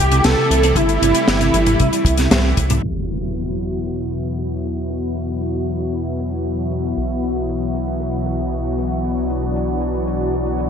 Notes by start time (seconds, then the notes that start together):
Already playing: C3 E3 G3 A3 E4 G4
0.00 C2
0.12 C3, closed hi-hat
0.24 C2 C3 A4, snare, closed hi-hat
0.37 C3
0.50 C2, closed hi-hat
0.63 C4, closed hi-hat
0.76 G1 C3 E4, kick, closed hi-hat
0.89 closed hi-hat
1.02 G1 C3, closed hi-hat
1.15 G3, closed hi-hat
1.28 G1, snare, closed hi-hat
1.41 C3, closed hi-hat
1.54 G1 E3, closed hi-hat
1.66 closed hi-hat, mid tom
1.80 C2 C3, kick, closed hi-hat
1.93 G3, closed hi-hat
2.05 C2, kick, closed hi-hat
2.18 C3, snare, closed hi-hat
2.31 C2 C4, snare, closed hi-hat, mid tom
2.44 C4
2.57 C2, kick, closed hi-hat
2.70 C3, closed hi-hat, mid tom
2.83 E2 B2 E3 F#3 E4 F#4, closed hi-hat, impact
3.10 closed hi-hat
3.22 closed hi-hat
3.34 closed hi-hat
3.47 closed hi-hat
3.61 closed hi-hat
3.74 closed hi-hat
3.87 closed hi-hat
4.12 closed hi-hat
4.25 closed hi-hat
4.38 closed hi-hat
4.65 closed hi-hat
4.77 closed hi-hat
4.90 closed hi-hat
5.16 closed hi-hat
5.29 closed hi-hat
5.42 closed hi-hat
5.55 closed hi-hat
5.68 closed hi-hat
5.80 closed hi-hat
5.93 closed hi-hat
6.19 closed hi-hat
6.33 closed hi-hat
6.46 closed hi-hat
6.71 closed hi-hat
6.83 closed hi-hat
6.97 B1, closed hi-hat
7.23 closed hi-hat
7.36 closed hi-hat
7.49 closed hi-hat
7.62 closed hi-hat
7.75 closed hi-hat
7.87 closed hi-hat
8.00 closed hi-hat
8.26 closed hi-hat
8.40 closed hi-hat
8.53 closed hi-hat
8.78 closed hi-hat
8.91 closed hi-hat
9.04 D4, closed hi-hat
9.30 closed hi-hat
9.42 closed hi-hat
9.56 closed hi-hat
9.68 closed hi-hat
9.81 closed hi-hat
9.94 closed hi-hat
10.07 closed hi-hat
10.20 closed hi-hat
10.34 closed hi-hat
10.46 closed hi-hat
10.58 closed hi-hat